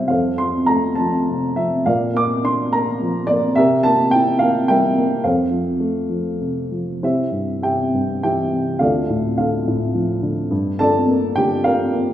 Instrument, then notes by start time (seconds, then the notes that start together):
upright piano
Already playing: C3 G3 E4 G4 A#4 C5 D5 E5 F5
0.08 F2 A4 C5 F5
0.38 F3 C6
0.66 A3 A#5
0.95 F3 A5
1.29 C3
1.56 F3 E5
1.86 A#2 A#4 D5 F5
2.14 A#3 D6
2.43 D4 C6
2.72 A#3 A#5
3.01 F3
3.27 A#3 D5
3.55 C3 G4 A#4 E5
3.83 A#3 A5
4.11 E4 G5
4.39 A#3 F5
4.68 G3 A#4 E5 G5
4.98 A#3
5.24 F2 A4 C5 F5
5.50 F3
5.80 A3
6.09 F3
6.41 C3
6.71 F3
7.03 C2 E4 G4 C5 E5
7.32 G2
7.62 C3 G4 E5 G5
7.94 G2
8.23 E3 G4 E5 G5
8.52 C3
8.79 D2 F4 A4 D5 F5
9.09 A2
9.37 D3 F4 A4 F5
9.67 A2
9.94 F3
10.22 D3
10.51 G2
10.79 D3 A4 D5 A5
11.08 A#3
11.36 D3 G4 G5
11.64 D4 F4 A#4 F5
11.93 A#3